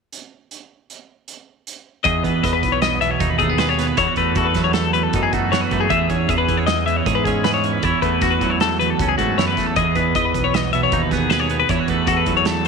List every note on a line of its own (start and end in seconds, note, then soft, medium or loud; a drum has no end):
0.12 closed hi-hat medium
0.51 closed hi-hat medium
0.90 closed hi-hat soft
1.28 closed hi-hat medium
1.67 closed hi-hat medium
2.04 2.22 E2 loud
2.04 3.59 E2 medium
2.04 2.44 G#4 medium
2.04 2.24 D#5 medium
2.04 kick loud
2.04 closed hi-hat medium
2.24 2.42 E2 medium
2.24 3.39 B3 medium
2.24 2.43 B4 medium
2.24 kick medium
2.24 closed hi-hat medium
2.43 2.61 E2 medium
2.43 3.59 B4 medium
2.43 2.53 D#5 medium
2.43 kick medium
2.43 snare soft
2.43 closed hi-hat medium
2.53 2.73 B4 medium
2.63 3.15 B1 medium
2.63 kick medium
2.63 closed hi-hat medium
2.72 2.82 C#5 medium
2.82 3.01 D#5 medium
2.82 snare medium
2.82 closed hi-hat medium
3.01 3.98 B2 soft
3.01 3.11 E5 medium
3.01 closed hi-hat medium
3.11 3.30 C#5 medium
3.20 3.38 D#2 medium
3.20 3.95 D#4 medium
3.20 kick loud
3.20 closed hi-hat medium
3.30 3.38 B4 medium
3.39 3.92 D#2 medium
3.39 3.50 A3 medium
3.39 3.58 G#4 medium
3.39 kick medium
3.39 closed hi-hat medium
3.50 3.77 B3 soft
3.58 3.96 G#4 medium
3.58 3.69 B4 medium
3.58 snare loud
3.58 closed hi-hat medium
3.69 3.87 C#5 medium
3.79 3.96 B3 medium
3.79 snare soft
3.79 closed hi-hat medium
3.87 3.98 B4 medium
3.97 4.07 E2 loud
3.97 4.93 E2 medium
3.97 4.07 E4 medium
3.97 4.17 C#5 medium
3.97 kick loud
3.97 closed hi-hat medium
4.07 4.36 F#4 medium
4.16 4.35 E2 medium
4.16 5.34 A3 medium
4.16 4.37 B4 medium
4.16 kick medium
4.16 closed hi-hat medium
4.35 4.54 E2 medium
4.35 4.46 F#4 medium
4.35 5.53 A4 medium
4.35 kick medium
4.35 closed hi-hat medium
4.45 4.64 B4 medium
4.54 5.07 E2 medium
4.54 5.88 F#3 medium
4.54 kick medium
4.54 snare soft
4.54 closed hi-hat medium
4.64 4.73 C#5 medium
4.73 4.93 A4 medium
4.73 snare medium
4.73 closed hi-hat medium
4.93 5.51 E2 medium
4.93 5.03 B4 medium
4.93 closed hi-hat medium
5.03 5.23 A4 medium
5.13 5.31 F#2 loud
5.13 5.89 D#4 medium
5.13 kick loud
5.13 closed hi-hat medium
5.23 5.33 G#4 medium
5.33 5.67 F#2 medium
5.33 5.72 A3 medium
5.33 5.52 F#4 medium
5.33 kick medium
5.33 closed hi-hat medium
5.52 5.88 E2 medium
5.52 5.89 F#4 medium
5.52 5.61 C#5 medium
5.52 snare medium
5.52 closed hi-hat medium
5.61 5.81 B4 medium
5.71 5.89 F#2 medium
5.71 6.09 A3 medium
5.71 kick medium
5.71 closed hi-hat medium
5.81 5.90 G#4 medium
5.89 6.86 E2 medium
5.89 6.08 E2 loud
5.89 6.29 G#4 medium
5.89 6.10 E5 medium
5.89 kick medium
5.89 closed hi-hat medium
6.10 6.27 E2 medium
6.10 7.25 C#4 medium
6.10 6.29 C#5 medium
6.10 kick medium
6.10 closed hi-hat medium
6.29 6.47 E2 medium
6.29 7.05 G#4 medium
6.29 6.37 E5 medium
6.29 kick medium
6.29 closed hi-hat medium
6.38 6.57 B4 medium
6.48 7.00 E2 medium
6.48 8.42 E3 medium
6.48 kick medium
6.48 closed hi-hat medium
6.57 6.66 C#5 medium
6.67 6.86 D#5 medium
6.67 snare loud
6.67 closed hi-hat medium
6.86 7.44 E2 medium
6.86 6.97 E5 medium
6.86 closed hi-hat medium
6.97 7.16 C#5 medium
7.06 7.24 G#2 medium
7.06 7.44 G#4 medium
7.06 kick loud
7.06 closed hi-hat medium
7.15 7.24 B4 medium
7.24 7.77 G#2 medium
7.24 7.64 C#4 medium
7.24 7.44 G#4 medium
7.24 kick medium
7.24 closed hi-hat medium
7.44 7.84 E2 medium
7.44 7.81 G#4 medium
7.44 7.53 B4 medium
7.44 snare medium
7.44 closed hi-hat medium
7.54 7.73 C#5 medium
7.64 7.82 C#4 medium
7.64 closed hi-hat soft
7.73 7.83 B4 medium
7.83 7.92 E2 loud
7.83 8.81 E2 medium
7.83 8.24 E4 medium
7.83 8.02 C#5 medium
7.83 kick loud
7.83 closed hi-hat medium
8.02 8.20 E2 medium
8.02 9.19 A3 medium
8.02 8.22 B4 medium
8.02 kick medium
8.02 closed hi-hat medium
8.21 8.39 E2 medium
8.21 8.32 F#4 medium
8.21 9.39 F#4 medium
8.21 kick loud
8.21 snare soft
8.21 closed hi-hat medium
8.31 8.50 B4 medium
8.41 8.93 E2 medium
8.41 9.74 F#3 medium
8.41 kick medium
8.41 closed hi-hat medium
8.50 8.60 C#5 medium
8.60 8.79 A4 medium
8.60 snare loud
8.60 closed hi-hat medium
8.80 9.37 E2 medium
8.80 8.90 B4 medium
8.80 closed hi-hat medium
8.90 9.09 A4 medium
9.00 9.17 C#2 medium
9.00 9.75 C#4 medium
9.00 kick loud
9.00 closed hi-hat medium
9.09 9.17 G#4 medium
9.18 9.36 G#2 medium
9.18 9.57 A3 medium
9.18 9.37 F#4 medium
9.18 kick medium
9.18 closed hi-hat medium
9.38 9.76 E2 medium
9.38 9.55 F#2 medium
9.38 9.77 E4 soft
9.38 9.47 C#5 medium
9.38 snare loud
9.38 closed hi-hat medium
9.48 9.67 B4 medium
9.57 9.74 E2 medium
9.57 9.77 A3 medium
9.57 kick medium
9.57 snare soft
9.57 closed hi-hat medium
9.67 9.76 A4 medium
9.76 9.94 E2 medium
9.76 11.31 E2 medium
9.76 10.16 G#4 medium
9.76 9.96 D#5 medium
9.76 kick loud
9.76 closed hi-hat medium
9.95 10.13 E2 medium
9.95 11.11 B3 medium
9.95 10.15 B4 medium
9.95 kick medium
9.95 closed hi-hat medium
10.15 10.32 E2 medium
10.15 11.31 B4 medium
10.15 10.25 D#5 medium
10.15 kick loud
10.15 closed hi-hat medium
10.25 10.44 B4 medium
10.34 10.86 B1 medium
10.34 kick medium
10.34 closed hi-hat medium
10.44 10.54 C#5 medium
10.54 10.72 D#5 medium
10.54 snare loud
10.54 closed hi-hat medium
10.73 11.70 B2 medium
10.73 10.82 E5 medium
10.73 closed hi-hat medium
10.83 11.02 C#5 medium
10.92 11.10 D#2 loud
10.92 11.67 D#4 medium
10.92 kick loud
10.92 closed hi-hat medium
11.02 11.11 B4 medium
11.11 11.63 D#2 medium
11.11 11.49 B3 medium
11.11 11.30 G#4 medium
11.11 kick medium
11.11 snare soft
11.11 closed hi-hat medium
11.30 11.68 G#4 medium
11.30 11.40 B4 medium
11.30 snare medium
11.30 closed hi-hat medium
11.40 11.59 C#5 medium
11.49 11.67 B3 medium
11.49 closed hi-hat medium
11.60 11.69 B4 medium
11.69 12.65 E2 medium
11.69 11.78 E2 loud
11.69 11.79 E4 medium
11.69 11.89 C#5 medium
11.69 kick loud
11.69 closed hi-hat medium
11.79 12.08 F#4 medium
11.88 12.05 E2 medium
11.88 12.68 A3 medium
11.88 12.08 B4 medium
11.88 kick medium
11.88 closed hi-hat soft
12.07 12.25 E2 medium
12.07 12.17 F#4 medium
12.07 12.68 A4 medium
12.07 kick medium
12.07 closed hi-hat medium
12.17 12.36 B4 medium
12.26 12.68 E2 medium
12.26 12.68 F#3 medium
12.26 kick medium
12.26 closed hi-hat medium
12.37 12.46 C#5 medium
12.45 12.66 A4 medium
12.45 snare loud
12.45 closed hi-hat medium
12.65 closed hi-hat medium